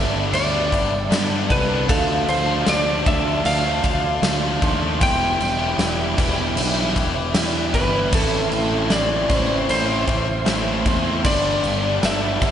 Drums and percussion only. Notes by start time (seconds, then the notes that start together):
0.33 crash
0.72 kick, crash
1.12 snare, crash
1.50 kick, crash
1.89 kick, crash
2.28 crash
2.66 snare, crash
3.06 kick, crash
3.45 crash
3.83 kick, crash
4.23 snare, crash
4.62 kick, crash
5.01 kick, crash
5.40 crash
5.79 snare, crash
6.18 kick, crash
6.57 crash
6.96 kick, crash
7.35 snare, crash
7.74 kick, crash
8.12 kick, crash
8.52 crash
8.90 snare, crash
9.30 kick, crash
9.69 crash
10.07 kick, crash
10.46 snare, crash
10.86 kick, crash
11.25 kick, crash
11.64 crash
12.03 snare, crash
12.42 kick, crash